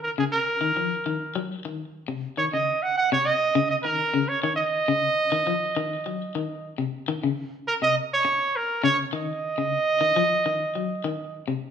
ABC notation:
X:1
M:4/4
L:1/16
Q:"Swing 16ths" 1/4=102
K:Ebdor
V:1 name="Trumpet"
B A B8 z6 | d e2 g g d e3 e B3 d d e- | e12- e2 z2 | z4 B e2 d3 B2 d2 e2- |
e12- e2 z2 |]
V:2 name="Clean electric guitar" clef=bass
z D,2 z E, F,2 E,2 G,2 E,2 z C,2 | E, D,2 z2 C,2 z D,2 E,2 D,2 E,2 | z D,2 z E, F,2 E,2 G,2 E,2 z C,2 | E, D,2 z2 C,2 z4 z D,2 E,2 |
z D,2 z E, F,2 E,2 G,2 E,2 z C,2 |]